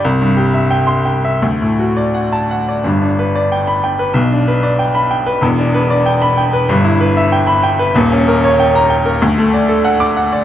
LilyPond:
\new Staff \with { instrumentName = "Grand piano" } { \time 2/4 \key g \major \tempo 4 = 94 << { r4 r16 c'''8 r16 | r4 r16 a''8 r16 | r4 r16 b''8 r16 | r4 r16 b''8 r16 |
r4 r16 b''8 r16 | r4 r16 b''8 r16 | r4 r16 bes''8 r16 | r4 r16 d'''8 r16 | } \\ { c,16 g,16 g'16 e''16 g''8 g''16 e''16 | d,16 a,16 fis'16 d''16 fis''8 fis''16 d''16 | <g,, g,>16 d'16 b'16 d''16 g''8 g''16 b'16 | <b,, b,>16 d'16 b'16 d''16 g''8 g''16 b'16 |
<e,, e,>16 d'16 b'16 d''16 g''8 g''16 b'16 | <g,, g,>16 e'16 b'16 e''16 g''8 g''16 b'16 | <ees,, ees,>16 des'16 bes'16 des''16 g''8 g''16 bes'16 | d,16 a16 d''16 a'16 fis''8 fis''16 d''16 | } >> }